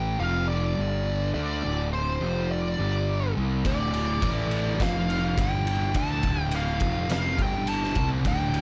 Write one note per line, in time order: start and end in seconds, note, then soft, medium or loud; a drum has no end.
0.00 0.15 A1 loud
0.00 0.18 A2 medium
0.00 0.18 E3 loud
0.00 0.18 A3 loud
0.00 0.19 G5 medium
0.19 0.73 F1 loud
0.19 0.77 F2 medium
0.19 0.78 C3 loud
0.19 0.78 F3 loud
0.19 0.46 F5 loud
0.48 1.30 D5 medium
0.77 1.31 G1 medium
0.77 1.33 G2 medium
0.77 1.34 D3 medium
0.77 1.34 G3 loud
1.34 1.61 D2 medium
1.34 1.62 D3 medium
1.34 1.62 A3 loud
1.34 1.63 D4 loud
1.34 1.88 D5 medium
1.64 2.17 D1 medium
1.64 2.20 D2 loud
1.64 2.20 A2 medium
1.64 2.20 D3 medium
1.93 2.51 C5 medium
2.21 2.74 F1 medium
2.21 2.78 F2 medium
2.21 2.78 C3 medium
2.21 2.78 F3 loud
2.52 3.33 D5 medium
2.79 3.32 G1 medium
2.79 3.35 G2 medium
2.79 3.35 D3 medium
2.79 3.36 G3 loud
3.36 3.63 C2 loud
3.36 3.63 C3 medium
3.36 3.64 G3 medium
3.36 3.64 C4 loud
3.64 4.18 D1 medium
3.64 4.21 D2 loud
3.64 4.21 A2 medium
3.64 4.22 D3 loud
3.64 4.82 D5 medium
3.64 kick loud
3.64 ride medium
3.94 ride medium
4.21 4.76 A1 medium
4.21 4.78 A2 medium
4.21 4.79 E3 medium
4.21 4.79 A3 medium
4.21 kick loud
4.21 ride medium
4.51 ride medium
4.78 5.33 F1 loud
4.78 5.35 F2 medium
4.78 5.36 C3 loud
4.78 5.36 F3 loud
4.78 kick loud
4.78 snare loud
4.78 ride medium
4.82 5.40 F5 loud
5.10 ride medium
5.37 5.91 G1 medium
5.37 5.94 G2 medium
5.37 5.93 D3 medium
5.37 5.94 G3 loud
5.37 kick loud
5.37 ride loud
5.42 5.97 G5 loud
5.67 ride medium
5.94 6.21 D2 medium
5.94 6.22 D3 medium
5.94 6.23 A3 medium
5.94 6.23 D4 loud
5.94 6.42 A5 loud
5.94 kick loud
5.94 ride loud
6.23 6.77 D1 medium
6.23 6.80 D2 medium
6.23 6.81 A2 medium
6.23 6.81 D3 loud
6.23 kick loud
6.23 ride medium
6.42 6.55 G5 loud
6.51 ride loud
6.56 7.08 F5 loud
6.80 7.35 F1 medium
6.80 7.37 F2 medium
6.80 7.38 C3 loud
6.80 7.38 F3 loud
6.80 kick loud
6.80 ride medium
7.09 7.40 F5 loud
7.09 snare loud
7.09 ride medium
7.37 7.93 G1 loud
7.37 7.95 G2 medium
7.37 7.95 D3 loud
7.37 7.95 G3 loud
7.37 kick loud
7.37 ride medium
7.42 7.68 G5 medium
7.67 8.09 A5 loud
7.67 ride medium
7.84 snare soft
7.95 8.23 C2 loud
7.95 8.24 C3 medium
7.95 8.24 G3 medium
7.95 8.25 C4 loud
7.95 kick loud
7.95 ride medium
8.25 8.61 D1 medium
8.25 8.61 D2 medium
8.25 8.61 A2 loud
8.25 8.61 D3 loud
8.25 8.61 G5 medium
8.25 kick loud
8.25 ride medium
8.54 ride medium